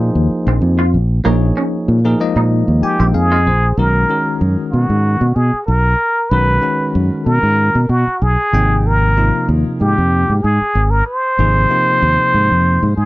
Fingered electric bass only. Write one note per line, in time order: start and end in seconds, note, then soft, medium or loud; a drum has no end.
0.15 0.27 D#2 medium
0.30 muted fingered electric bass stroke soft
0.47 0.59 A#1 medium
0.62 0.95 F2 loud
0.94 1.19 A#1 medium
1.25 1.51 A#1 medium
1.88 2.14 A#2 medium
2.36 2.62 A#2 medium
2.68 2.80 D#2 medium
2.82 muted fingered electric bass stroke soft
3.00 3.12 A#1 medium
3.14 3.48 F2 medium
3.47 3.72 A#1 medium
3.77 4.03 B1 medium
4.41 4.55 F#2 medium
4.73 4.87 B2 medium
4.90 5.15 G#2 medium
5.21 5.33 B2 medium
5.36 5.50 B2 medium
5.53 muted fingered electric bass stroke soft
5.68 5.94 B1 medium
6.31 6.57 B1 medium
6.95 7.09 F#2 medium
7.26 7.40 B2 medium
7.43 7.69 G#2 medium
7.75 7.87 B2 medium
7.89 8.03 B2 medium
8.07 muted fingered electric bass stroke soft
8.22 8.35 B1 medium
8.53 9.30 G#1 medium
9.49 9.62 D#2 medium
9.81 9.94 G#2 medium
9.98 10.23 F2 medium
10.30 10.41 G#2 medium
10.44 10.58 G#2 medium
10.61 muted fingered electric bass stroke soft
10.75 11.01 G#1 medium
11.39 11.64 G#1 medium
12.02 12.16 D#2 medium
12.34 12.48 G#2 medium
12.51 12.77 F2 medium
12.83 12.95 G#2 medium
12.97 13.05 G#2 medium